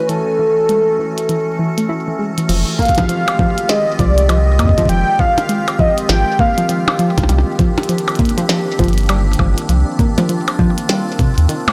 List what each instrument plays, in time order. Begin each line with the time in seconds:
Already playing: ambient pad E3 A3 C#4 F#4
0.09 synth arpeggio sound E3, soft synth lead A4, ambient pad A4, closed hi-hat
0.39 synth arpeggio sound E3
0.69 synth arpeggio sound G#3, closed hi-hat
0.99 synth arpeggio sound E3
1.18 closed hi-hat
1.29 synth arpeggio sound E3, closed hi-hat
1.59 synth arpeggio sound E3
1.78 synth arpeggio sound A3, closed hi-hat
1.89 synth arpeggio sound E4
2.08 synth arpeggio sound E3
2.19 synth arpeggio sound G#3
2.38 synth arpeggio sound E3, closed hi-hat
2.49 sub bass F1, ambient pad D#3 G#3 C4 F4 G4, synth arpeggio sound F3, closed hi-hat, crash
2.79 synth arpeggio sound A#3, soft synth lead F5, kick, closed hi-hat
2.82 closed hi-hat
2.85 closed hi-hat
2.88 kick, closed hi-hat
2.95 synth arpeggio sound F3, closed hi-hat
2.98 kick, closed hi-hat, percussion blips
3.09 synth arpeggio sound F3, closed hi-hat
3.28 closed hi-hat, percussion blips
3.39 synth arpeggio sound F3, kick
3.58 closed hi-hat
3.69 synth arpeggio sound G#3, soft synth lead D#5, snare, closed hi-hat
3.99 sub bass C2, synth arpeggio sound F3, soft synth lead D5, kick, closed hi-hat
4.18 closed hi-hat
4.29 synth arpeggio sound F3, soft synth lead D#5, closed hi-hat, percussion blips
4.59 sub bass F2, synth arpeggio sound A#3, kick, closed hi-hat, percussion blips
4.65 kick
4.69 kick
4.78 synth arpeggio sound F3, kick, closed hi-hat
4.85 sub bass F1, synth arpeggio sound F3, soft synth lead G5, kick, closed hi-hat
5.19 synth arpeggio sound F3, soft synth lead F5, kick
5.38 closed hi-hat, percussion blips
5.49 synth arpeggio sound G#3, closed hi-hat
5.68 closed hi-hat, percussion blips
5.79 synth arpeggio sound F3, soft synth lead D#5, kick
5.98 closed hi-hat
6.09 sub bass G#1, synth arpeggio sound F3, soft synth lead G5, snare, closed hi-hat
6.39 synth arpeggio sound A#3, soft synth lead F5, kick
6.58 synth arpeggio sound F3, closed hi-hat
6.69 synth arpeggio sound F3, closed hi-hat
6.88 percussion blips
6.99 synth arpeggio sound F3, closed hi-hat
7.18 sub bass C2, kick, closed hi-hat, percussion blips
7.23 percussion blips
7.29 sub bass C2, ambient pad D#3 A#3 C4 D4 G4, synth arpeggio sound G3, closed hi-hat, percussion blips
7.38 percussion blips
7.59 synth arpeggio sound F3, kick, closed hi-hat
7.78 closed hi-hat, percussion blips
7.83 closed hi-hat
7.89 synth arpeggio sound F3, closed hi-hat
7.98 closed hi-hat
8.08 closed hi-hat, percussion blips
8.15 closed hi-hat
8.19 synth arpeggio sound A#3, kick, closed hi-hat
8.25 closed hi-hat
8.29 closed hi-hat
8.38 synth arpeggio sound F3, closed hi-hat
8.49 synth arpeggio sound F3, snare, closed hi-hat
8.79 sub bass G1, synth arpeggio sound F3, kick, closed hi-hat
8.84 closed hi-hat
8.88 closed hi-hat
8.93 closed hi-hat
8.98 closed hi-hat
9.01 closed hi-hat
9.03 closed hi-hat
9.06 closed hi-hat
9.09 synth arpeggio sound G3, closed hi-hat, percussion blips
9.33 closed hi-hat
9.39 sub bass G1, synth arpeggio sound F3, kick, percussion blips
9.58 closed hi-hat
9.69 sub bass C2, synth arpeggio sound F3, ambient pad F4, closed hi-hat
9.99 synth arpeggio sound A#3, kick, closed hi-hat
10.18 synth arpeggio sound F3, closed hi-hat, percussion blips
10.29 synth arpeggio sound F3, closed hi-hat
10.48 closed hi-hat, percussion blips
10.59 synth arpeggio sound F3, kick
10.78 closed hi-hat
10.89 synth arpeggio sound G3, snare, closed hi-hat
11.19 synth arpeggio sound C3, kick, closed hi-hat
11.38 sub bass D#2, closed hi-hat
11.49 synth arpeggio sound D#3, closed hi-hat
11.68 percussion blips